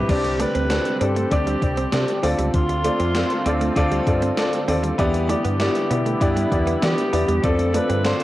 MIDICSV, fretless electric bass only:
0, 0, Header, 1, 2, 480
1, 0, Start_track
1, 0, Tempo, 612245
1, 71, Time_signature, 4, 2, 24, 8
1, 6457, End_track
2, 0, Start_track
2, 0, Title_t, "Fretless electric bass"
2, 0, Program_c, 0, 35
2, 71, Note_on_c, 0, 36, 99
2, 341, Note_off_c, 0, 36, 0
2, 432, Note_on_c, 0, 38, 82
2, 611, Note_off_c, 0, 38, 0
2, 791, Note_on_c, 0, 43, 82
2, 971, Note_off_c, 0, 43, 0
2, 1030, Note_on_c, 0, 38, 95
2, 1211, Note_off_c, 0, 38, 0
2, 1270, Note_on_c, 0, 36, 84
2, 1450, Note_off_c, 0, 36, 0
2, 1511, Note_on_c, 0, 48, 91
2, 1601, Note_off_c, 0, 48, 0
2, 1751, Note_on_c, 0, 38, 86
2, 1841, Note_off_c, 0, 38, 0
2, 1871, Note_on_c, 0, 37, 84
2, 1961, Note_off_c, 0, 37, 0
2, 1991, Note_on_c, 0, 38, 110
2, 2261, Note_off_c, 0, 38, 0
2, 2351, Note_on_c, 0, 41, 88
2, 2531, Note_off_c, 0, 41, 0
2, 2711, Note_on_c, 0, 38, 86
2, 2891, Note_off_c, 0, 38, 0
2, 2949, Note_on_c, 0, 38, 92
2, 3130, Note_off_c, 0, 38, 0
2, 3189, Note_on_c, 0, 43, 89
2, 3370, Note_off_c, 0, 43, 0
2, 3670, Note_on_c, 0, 39, 82
2, 3851, Note_off_c, 0, 39, 0
2, 3911, Note_on_c, 0, 40, 95
2, 4181, Note_off_c, 0, 40, 0
2, 4271, Note_on_c, 0, 43, 83
2, 4451, Note_off_c, 0, 43, 0
2, 4631, Note_on_c, 0, 47, 86
2, 4811, Note_off_c, 0, 47, 0
2, 4869, Note_on_c, 0, 43, 86
2, 5050, Note_off_c, 0, 43, 0
2, 5110, Note_on_c, 0, 40, 78
2, 5290, Note_off_c, 0, 40, 0
2, 5352, Note_on_c, 0, 52, 95
2, 5441, Note_off_c, 0, 52, 0
2, 5591, Note_on_c, 0, 40, 83
2, 5681, Note_off_c, 0, 40, 0
2, 5711, Note_on_c, 0, 40, 91
2, 5801, Note_off_c, 0, 40, 0
2, 5830, Note_on_c, 0, 41, 103
2, 6100, Note_off_c, 0, 41, 0
2, 6191, Note_on_c, 0, 43, 87
2, 6371, Note_off_c, 0, 43, 0
2, 6457, End_track
0, 0, End_of_file